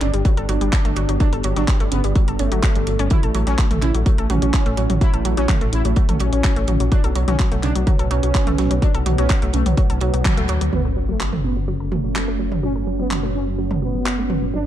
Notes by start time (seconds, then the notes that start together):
Already playing: B3 D4 G4 D5
0.01 G1 C#3 D4, clap, closed hi-hat
0.14 G1 G3, closed hi-hat
0.25 F#3 G3, kick, closed hi-hat
0.37 G1 G3 A4, closed hi-hat
0.49 G1 F#3 D4, closed hi-hat
0.61 G1 G3, closed hi-hat
0.73 F#3, kick, snare, clap, closed hi-hat
0.85 G1 A3, closed hi-hat
0.96 G1 F#3, closed hi-hat
1.09 G1 F#3, closed hi-hat
1.20 F#3 D4, kick, closed hi-hat
1.33 G1 G3 A4, closed hi-hat
1.43 G1 F#3 G3, closed hi-hat
1.56 G1 F#3 D4, snare, closed hi-hat
1.68 F#3 G3, kick, snare, clap, closed hi-hat
1.80 G1 G3 A3, closed hi-hat
1.92 G1 C#3 B3, closed hi-hat
2.04 G1 G3, closed hi-hat
2.15 F#3 G3, kick, closed hi-hat
2.28 G1 G3 A4, closed hi-hat
2.39 G1 A3 C#4, closed hi-hat
2.52 G1 F#3, closed hi-hat
2.63 F#3, kick, snare, clap, closed hi-hat
2.75 G1 G3, closed hi-hat
2.87 G1 F#3, closed hi-hat
2.99 G1 C#4, closed hi-hat
3.10 F#3 A3 E4 F#4 C#5, kick, closed hi-hat, mid tom
3.23 A1 A3 A4, closed hi-hat
3.35 A1 F#3 A3, closed hi-hat
3.47 A1 F#3 C#4, snare, closed hi-hat
3.58 F#3 A3, kick, snare, clap, closed hi-hat
3.71 A1 A3, closed hi-hat, mid tom
3.82 A1 C#3 E4, clap, closed hi-hat
3.95 A1 F#3 A3, closed hi-hat
4.06 F#3 A3, kick, closed hi-hat
4.18 A1 A3 A4, closed hi-hat
4.30 A1 F#3 C#4, closed hi-hat, mid tom
4.42 A1 F#3, closed hi-hat
4.54 F#3, kick, snare, clap, closed hi-hat
4.66 A1 A3, closed hi-hat
4.77 A1 F#3, closed hi-hat
4.90 A1 F#3, closed hi-hat, mid tom
5.01 F#3 E4, kick, closed hi-hat
5.14 A1 A3 A4, closed hi-hat
5.25 A1 F#3 A3, closed hi-hat
5.37 A1 F#3 C#4, snare, closed hi-hat
5.49 F#3 A3, kick, snare, clap, closed hi-hat, mid tom
5.61 A1 A3, closed hi-hat
5.73 A1 C#3 E4, closed hi-hat
5.85 A1 F#3 A3, closed hi-hat
5.96 F#3 A3, kick, closed hi-hat
6.09 A1 A3 A4, closed hi-hat, mid tom
6.20 A1 F#3 C#4, closed hi-hat
6.33 A1 F#3, closed hi-hat
6.44 F#3, kick, snare, clap, closed hi-hat
6.56 A1 A3, closed hi-hat
6.67 A1 F#3, closed hi-hat, mid tom
6.80 A1 F#3, closed hi-hat
6.92 F#3 B3 D4 F#4 B4, kick, closed hi-hat
7.04 B1 F#3 A4, closed hi-hat
7.16 B1 F#3, closed hi-hat
7.28 B1 F#3 C#4, snare, closed hi-hat, mid tom
7.39 F#3, kick, snare, clap, closed hi-hat
7.52 B1 F#3 A3, closed hi-hat
7.63 B1 C#3 D4, clap, closed hi-hat
7.75 B1 F#3, closed hi-hat
7.87 F#3, kick, closed hi-hat, mid tom
7.99 B1 F#3 A4, closed hi-hat
8.11 B1 F#3 C#4, closed hi-hat
8.23 B1 F#3, closed hi-hat
8.34 F#3, kick, snare, clap, closed hi-hat
8.47 B1 A3, closed hi-hat, mid tom
8.58 B1 F#3, snare, closed hi-hat
8.71 B1 F#3, closed hi-hat
8.82 F#3 D4, kick, closed hi-hat
8.95 B1 F#3 A4, closed hi-hat
9.06 B1 F#3, closed hi-hat, mid tom
9.18 B1 F#3 C#4, snare, closed hi-hat
9.29 F#3, kick, snare, clap, closed hi-hat
9.42 B1 F#3 A3, closed hi-hat
9.53 B1 C#3 A3, closed hi-hat
9.66 B1 F#3, closed hi-hat, mid tom
9.77 F#3, kick, closed hi-hat
9.90 B1 F#3 A4, closed hi-hat
10.01 B1 F#3, closed hi-hat
10.14 B1 F#3, closed hi-hat
10.25 F#3, kick, snare, clap, closed hi-hat, mid tom
10.37 C#2 A3, closed hi-hat
10.48 D2 F#3, closed hi-hat
10.61 D2 F#3, closed hi-hat
10.73 F#1 F#3 A3 B3 C#4 F#4 C#5, mid tom, sub drop
10.85 C#3 A4
10.96 C#3 F#3
11.09 F#3 A3
11.20 C#3 F#3, clap
11.33 C#3 A3, mid tom
11.44 C#3 B3
11.57 C#3 F#3
11.68 C#3 F#3
11.80 C#3 A4
11.92 F#3 A3, mid tom
12.04 F#3
12.16 F#3, clap
12.28 A3
12.39 F#3
12.52 F#3, mid tom
12.63 F#3 C#4
12.76 F#3 A4
12.87 F#3
12.99 F#3 B3
13.11 F#3, clap, mid tom
13.23 F#3 A3
13.35 C#3 C#4
13.47 F#3
13.58 F#3
13.71 F#3 A4, mid tom
13.82 F#3 B3
13.95 F#3
14.06 F#3, clap
14.18 A3
14.30 F#3, mid tom
14.42 F#3
14.54 G1 F#3 B3 D4 G4 D5